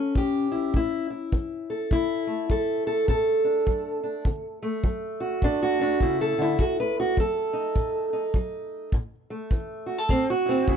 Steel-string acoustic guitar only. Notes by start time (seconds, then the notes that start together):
Already playing: A2 C#4 A4
0.16 E3 G4
0.52 E4
0.74 A2 E4
1.10 E4
1.33 E3
1.70 A4
1.92 D3 E4
2.27 A3
2.50 F#3 A4
2.87 A4
3.08 A2 A4
3.44 D4
3.67 F#3
4.03 D4
4.26 D3
4.62 A3
4.84 F#3
5.20 F#4
5.43 A2 D4
5.62 F#4
5.79 A3 D4
6.02 C#3 E4
6.21 A4
6.38 D3 E4
6.60 D#3 F#4
6.80 B4
7.00 F#4
7.18 F#3 A4
7.53 D#4
7.76 A2
8.13 D#4
8.35 F#3
8.94 A2
9.30 A3
9.52 E3
9.86 F#4
9.98 A4
10.10 A2 C4
10.30 F#4
10.46 C4 E4
10.68 C#3 E4